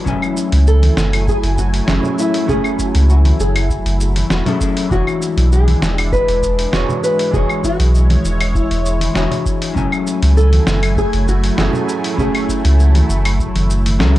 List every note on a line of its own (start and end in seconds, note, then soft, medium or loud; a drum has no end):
0.00 1.83 F#3 medium
0.00 9.72 E4 medium
0.05 0.17 F#1 medium
0.05 4.87 F#3 medium
0.05 4.87 A3 medium
0.05 1.84 C#4 medium
0.05 1.85 E4 medium
0.05 4.87 G#5 medium
0.05 1.85 G#5 medium
0.05 kick loud
0.05 low conga medium
0.05 shaker soft
0.09 1.86 A3 medium
0.22 claves medium
0.22 shaker soft
0.37 shaker medium
0.52 0.90 C#2 loud
0.52 open hi-hat soft
0.52 shaker soft
0.67 1.28 A4 medium
0.67 shaker soft
0.83 open hi-hat soft
0.83 high conga medium
0.97 1.35 F#1 medium
0.97 snare medium
0.97 shaker medium
1.13 open hi-hat medium
1.13 claves medium
1.13 shaker soft
1.27 1.37 G#4 medium
1.27 kick loud
1.27 shaker soft
1.43 1.81 F#1 loud
1.43 open hi-hat soft
1.43 shaker soft
1.58 2.19 F#4 medium
1.58 kick medium
1.58 shaker medium
1.74 open hi-hat soft
1.74 shaker soft
1.87 1.99 F#1 medium
1.87 2.45 F#3 medium
1.87 2.45 C#4 medium
1.87 2.45 E4 medium
1.87 2.46 G#4 medium
1.87 2.46 A4 medium
1.87 snare medium
1.87 shaker soft
2.03 low conga medium
2.03 shaker soft
2.19 2.49 E4 medium
2.19 shaker medium
2.34 open hi-hat medium
2.34 shaker soft
2.46 2.60 F#1 loud
2.46 2.51 F#3 medium
2.46 4.26 C#4 medium
2.46 4.27 E4 medium
2.46 3.10 G#4 medium
2.46 kick loud
2.46 low conga medium
2.46 shaker soft
2.50 4.28 A3 medium
2.50 4.28 G#4 medium
2.64 claves medium
2.64 shaker soft
2.79 kick medium
2.79 shaker medium
2.95 3.32 C#2 loud
2.95 open hi-hat soft
2.95 shaker soft
3.10 3.18 F#4 medium
3.10 shaker soft
3.25 open hi-hat soft
3.25 high conga medium
3.39 3.78 F#1 medium
3.39 4.31 G#4 medium
3.39 shaker medium
3.56 open hi-hat medium
3.56 claves medium
3.56 shaker soft
3.70 kick loud
3.70 shaker soft
3.85 4.23 F#1 loud
3.85 open hi-hat soft
3.85 shaker soft
4.01 shaker medium
4.16 open hi-hat soft
4.16 high conga medium
4.16 shaker soft
4.30 4.41 E1 loud
4.30 4.91 F#4 medium
4.30 snare medium
4.30 shaker soft
4.46 4.57 F#3 medium
4.46 4.57 C#4 medium
4.46 4.58 E4 medium
4.46 4.58 G#4 medium
4.46 4.58 A4 medium
4.46 open hi-hat soft
4.46 low conga medium
4.46 shaker soft
4.60 4.87 F#3 medium
4.60 4.87 C#4 medium
4.60 4.88 E4 medium
4.60 4.88 G#4 medium
4.60 4.88 A4 medium
4.60 kick loud
4.60 shaker medium
4.77 open hi-hat medium
4.77 shaker soft
4.89 5.02 E1 loud
4.89 6.68 E3 medium
4.89 9.72 G#3 medium
4.89 6.69 D4 medium
4.89 7.31 D4 medium
4.89 6.70 F#4 medium
4.89 5.48 F#4 loud
4.89 6.70 G#4 medium
4.89 kick loud
4.89 low conga medium
4.89 shaker soft
4.94 6.71 C#5 medium
5.07 claves medium
5.07 shaker soft
5.22 shaker medium
5.37 5.74 B1 loud
5.37 open hi-hat soft
5.37 shaker soft
5.52 6.00 G#4 medium
5.52 shaker soft
5.68 open hi-hat soft
5.68 high conga medium
5.82 6.20 E1 medium
5.82 snare medium
5.82 shaker medium
5.98 6.12 F#4 medium
5.98 open hi-hat medium
5.98 claves medium
5.98 shaker soft
6.12 7.02 B4 loud
6.12 kick loud
6.12 shaker soft
6.28 6.65 E1 loud
6.28 open hi-hat soft
6.28 shaker soft
6.43 kick medium
6.43 shaker medium
6.59 open hi-hat medium
6.59 shaker soft
6.72 6.84 E1 medium
6.72 7.29 E3 medium
6.72 7.30 D4 medium
6.72 7.30 F#4 medium
6.72 7.30 G#4 medium
6.72 7.31 C#5 medium
6.72 snare medium
6.72 shaker soft
6.89 low conga medium
6.89 shaker soft
7.04 7.32 B4 medium
7.04 shaker medium
7.19 open hi-hat soft
7.19 shaker soft
7.31 7.44 E1 loud
7.31 9.11 E3 medium
7.31 9.11 D4 medium
7.31 9.12 F#4 medium
7.31 7.62 G#4 loud
7.31 9.74 C#5 medium
7.31 kick loud
7.31 low conga medium
7.31 shaker soft
7.35 9.13 G#4 medium
7.35 9.13 C#5 medium
7.49 claves medium
7.49 shaker soft
7.64 8.58 F#4 loud
7.64 kick medium
7.64 shaker medium
7.79 8.17 B1 loud
7.79 open hi-hat medium
7.79 shaker soft
7.95 shaker soft
8.10 open hi-hat soft
8.10 high conga medium
8.24 8.62 E1 medium
8.24 shaker medium
8.41 open hi-hat medium
8.41 claves medium
8.41 shaker soft
8.55 9.42 E4 medium
8.55 kick loud
8.55 shaker soft
8.71 9.08 E1 loud
8.71 open hi-hat soft
8.71 shaker soft
8.86 shaker medium
9.00 open hi-hat medium
9.00 high conga medium
9.00 shaker soft
9.14 9.26 E1 medium
9.14 9.72 E3 medium
9.14 9.72 D4 medium
9.14 9.73 F#4 medium
9.14 9.73 G#4 medium
9.14 9.73 C#5 medium
9.14 snare medium
9.14 shaker soft
9.31 open hi-hat soft
9.31 low conga medium
9.31 shaker soft
9.46 kick medium
9.46 shaker medium
9.62 open hi-hat medium
9.62 shaker soft
9.73 9.87 F#1 loud
9.73 11.53 F#3 medium
9.73 14.19 F#3 medium
9.73 14.19 A3 loud
9.73 11.54 C#4 medium
9.73 11.54 E4 medium
9.73 14.19 E4 medium
9.73 14.19 G#5 medium
9.73 11.55 G#5 medium
9.73 kick loud
9.73 low conga medium
9.73 shaker soft
9.78 11.56 A3 medium
9.92 claves medium
9.92 shaker soft
10.07 shaker medium
10.22 10.60 C#2 loud
10.22 open hi-hat medium
10.22 shaker soft
10.37 10.93 A4 loud
10.37 shaker soft
10.53 open hi-hat soft
10.53 high conga medium
10.67 11.05 F#1 medium
10.67 snare medium
10.67 shaker medium
10.83 open hi-hat medium
10.83 claves medium
10.83 shaker soft
10.97 11.28 G#4 loud
10.97 kick loud
10.97 shaker soft
11.13 11.50 F#1 loud
11.13 open hi-hat soft
11.13 shaker soft
11.27 11.58 F#4 medium
11.27 kick medium
11.27 shaker medium
11.44 open hi-hat medium
11.44 shaker soft
11.57 11.69 F#1 medium
11.57 12.14 F#3 medium
11.57 12.15 C#4 medium
11.57 12.15 E4 medium
11.57 12.19 F#4 loud
11.57 12.15 G#4 medium
11.57 12.16 A4 medium
11.57 snare medium
11.57 shaker soft
11.73 low conga medium
11.73 shaker soft
11.89 shaker medium
12.04 open hi-hat medium
12.04 shaker soft
12.15 12.29 F#1 loud
12.15 12.20 F#3 medium
12.15 13.96 C#4 medium
12.15 13.97 E4 medium
12.15 kick loud
12.15 low conga medium
12.15 shaker soft
12.19 13.98 A3 medium
12.19 13.97 G#4 medium
12.35 open hi-hat soft
12.35 claves medium
12.35 shaker soft
12.49 kick medium
12.49 shaker medium
12.65 13.02 C#2 loud
12.65 open hi-hat medium
12.65 shaker soft
12.80 shaker soft
12.95 open hi-hat soft
12.95 high conga medium
12.95 shaker soft
13.09 13.47 F#1 medium
13.09 shaker medium
13.25 open hi-hat medium
13.25 claves medium
13.25 shaker soft
13.39 kick loud
13.39 shaker soft
13.55 14.01 F#1 loud
13.55 open hi-hat soft
13.55 high conga medium
13.55 shaker soft
13.70 shaker medium
13.86 open hi-hat medium
13.86 high conga medium
13.86 shaker soft
13.99 14.19 C#2 medium
13.99 14.19 F#3 medium
13.99 14.19 C#4 medium
13.99 14.19 E4 medium
13.99 14.19 G#4 medium
13.99 14.19 A4 medium
13.99 snare medium
13.99 shaker soft